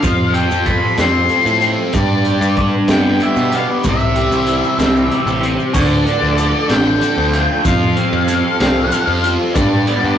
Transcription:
0.00 0.47 F2 medium
0.00 1.62 F3 medium
0.00 5.71 G3 medium
0.00 1.92 C4 medium
0.00 1.92 F4 medium
0.00 1.90 A4 medium
0.00 0.34 F5 medium
0.00 kick loud
0.00 closed hi-hat medium
0.00 shaker loud
0.34 1.28 A4 medium
0.34 0.67 G5 loud
0.34 closed hi-hat medium
0.34 shaker soft
0.51 0.81 F2 medium
0.51 shaker medium
0.66 1.93 F4 medium
0.66 0.96 B5 medium
0.66 kick medium
0.66 closed hi-hat soft
0.98 1.28 F2 medium
0.98 1.60 C4 medium
0.98 1.66 C6 medium
0.98 snare loud
0.98 closed hi-hat medium
0.98 shaker medium
1.29 1.93 A4 medium
1.29 closed hi-hat medium
1.29 shaker soft
1.45 1.75 A2 medium
1.45 shaker medium
1.61 1.93 C4 medium
1.61 closed hi-hat medium
1.93 3.52 G2 medium
1.93 2.38 G2 loud
1.93 3.83 B3 medium
1.93 3.83 D4 medium
1.93 3.83 B4 medium
1.93 2.54 D5 medium
1.93 kick loud
1.93 closed hi-hat medium
1.93 shaker loud
2.25 3.20 G4 medium
2.25 closed hi-hat medium
2.25 shaker soft
2.41 2.70 G2 medium
2.41 shaker medium
2.57 3.84 D4 medium
2.57 kick medium
2.57 closed hi-hat medium
2.88 3.18 G2 medium
2.88 3.52 B3 medium
2.88 3.22 G5 loud
2.88 snare loud
2.88 closed hi-hat medium
2.88 shaker medium
3.20 3.84 G4 medium
3.20 3.54 E5 medium
3.20 closed hi-hat medium
3.20 shaker soft
3.36 3.66 B2 medium
3.36 shaker medium
3.52 3.84 B3 medium
3.52 3.63 F5 medium
3.52 closed hi-hat medium
3.84 4.28 C2 loud
3.84 5.43 C3 medium
3.84 5.73 E3 medium
3.84 5.73 C4 medium
3.84 5.73 G4 medium
3.84 kick loud
3.84 closed hi-hat medium
3.84 shaker medium
3.89 5.41 E5 medium
4.00 shaker soft
4.16 5.09 G4 medium
4.16 closed hi-hat medium
4.31 4.61 C2 medium
4.31 shaker medium
4.47 5.74 E4 medium
4.47 closed hi-hat medium
4.47 shaker soft
4.64 shaker soft
4.79 5.08 C2 medium
4.79 5.40 C4 medium
4.79 snare loud
4.79 closed hi-hat medium
4.79 shaker medium
4.96 shaker soft
5.10 5.74 G4 medium
5.10 closed hi-hat medium
5.26 5.56 A1 medium
5.26 shaker medium
5.41 5.74 C4 medium
5.41 closed hi-hat medium
5.59 shaker soft
5.73 6.04 D2 medium
5.73 7.33 D3 medium
5.73 7.62 F3 medium
5.73 7.62 A3 medium
5.73 7.62 D4 medium
5.73 9.50 A4 medium
5.73 6.65 D5 medium
5.73 kick loud
5.73 crash loud
5.73 shaker medium
6.06 6.67 D4 medium
6.06 closed hi-hat medium
6.22 6.51 D2 medium
6.37 7.00 A4 medium
6.37 closed hi-hat medium
6.37 shaker medium
6.69 6.99 A1 medium
6.69 7.64 D4 medium
6.69 7.61 G5 medium
6.69 snare loud
6.69 closed hi-hat medium
7.01 7.65 A4 medium
7.01 closed hi-hat medium
7.01 shaker medium
7.18 7.47 D2 medium
7.32 7.64 F4 medium
7.32 closed hi-hat medium
7.32 shaker soft
7.64 7.94 F2 loud
7.64 9.23 F3 medium
7.64 9.53 G3 medium
7.64 9.52 C4 medium
7.64 9.52 F4 medium
7.64 8.60 F5 loud
7.64 kick loud
7.64 closed hi-hat medium
7.64 shaker medium
7.95 8.59 C4 medium
7.95 closed hi-hat medium
8.13 8.42 F2 medium
8.28 8.91 A4 medium
8.28 closed hi-hat medium
8.28 shaker medium
8.60 8.89 C2 medium
8.60 9.55 C4 medium
8.60 9.28 F5 medium
8.60 snare loud
8.60 closed hi-hat medium
8.92 9.55 A4 medium
8.92 closed hi-hat medium
8.92 shaker medium
9.07 9.37 F2 medium
9.24 9.55 F4 medium
9.24 closed hi-hat medium
9.24 shaker soft
9.54 9.84 G2 medium
9.54 10.18 G2 medium
9.54 10.18 G3 medium
9.54 10.18 B3 medium
9.54 10.18 D4 medium
9.54 10.18 B4 medium
9.54 10.14 D5 medium
9.54 kick loud
9.54 closed hi-hat loud
9.54 shaker medium
9.87 10.18 B3 medium
9.87 closed hi-hat medium
10.04 10.18 G2 medium

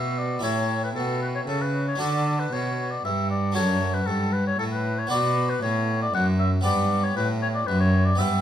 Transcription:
0.00 0.40 B2 medium
0.00 0.42 B2 medium
0.00 0.37 B3 soft
0.00 0.38 G4 soft
0.00 0.39 B4 soft
0.00 0.20 E5 medium
0.18 0.43 D5 medium
0.39 0.95 A2 medium
0.39 1.93 E4 soft
0.39 1.94 G4 soft
0.39 1.95 A4 soft
0.44 0.92 A2 medium
0.44 0.82 C#5 medium
0.84 0.90 B4 medium
0.95 1.46 B2 medium
0.95 1.44 B2 medium
0.95 1.21 A4 medium
1.22 1.28 B4 medium
1.35 1.41 C#5 medium
1.47 1.96 C#3 medium
1.47 1.99 C#3 medium
1.47 1.63 A4 medium
1.62 1.87 B4 medium
1.88 2.02 C#5 medium
1.95 3.50 D4 soft
1.95 3.50 F#4 soft
1.95 3.51 A4 soft
2.00 2.48 D3 medium
2.00 2.51 D3 medium
2.00 2.41 D5 medium
2.40 2.54 B4 medium
2.53 3.04 B2 medium
2.53 3.01 B2 medium
2.53 2.93 C#5 medium
2.91 3.04 D5 medium
3.05 3.57 G2 medium
3.05 3.52 G2 medium
3.05 3.30 E5 medium
3.30 3.55 D5 medium
3.52 4.07 F#2 medium
3.52 5.05 D4 medium
3.52 5.06 F#4 medium
3.52 5.07 A4 medium
3.52 3.95 C#5 medium
3.57 4.04 F#2 medium
3.94 4.08 B4 medium
4.06 4.58 G2 medium
4.06 4.55 G2 medium
4.06 4.34 A4 medium
4.33 4.46 B4 medium
4.47 4.58 C#5 medium
4.59 5.10 A2 medium
4.59 5.07 A2 medium
4.59 4.65 A4 medium
4.72 5.00 B4 medium
4.99 5.10 C#5 medium
5.07 6.59 B3 medium
5.07 6.60 F#4 medium
5.07 6.60 B4 medium
5.07 5.51 D5 loud
5.11 5.62 B2 medium
5.11 5.59 B2 medium
5.50 5.62 B4 medium
5.62 6.10 A2 medium
5.62 6.13 A2 medium
5.62 6.00 C#5 medium
6.02 6.14 D5 loud
6.13 6.64 F#2 medium
6.13 6.61 F#2 medium
6.13 6.26 F#5 loud
6.39 6.51 E5 medium
6.61 8.13 B3 medium
6.61 8.14 G4 medium
6.61 8.14 B4 medium
6.61 7.05 D5 loud
6.65 7.15 G2 medium
6.65 7.13 G2 medium
7.04 7.16 C#5 medium
7.16 7.67 A2 medium
7.16 7.64 A2 medium
7.16 7.28 B4 medium
7.42 7.48 C#5 medium
7.55 7.68 D5 medium
7.67 8.18 F#2 medium
7.67 8.15 F#2 medium
7.67 7.80 B4 loud
7.80 8.07 C#5 medium
8.06 8.20 D5 medium
8.15 8.41 B3 medium
8.15 8.41 G4 medium
8.15 8.41 B4 medium
8.15 8.41 E5 loud
8.20 8.41 G2 medium

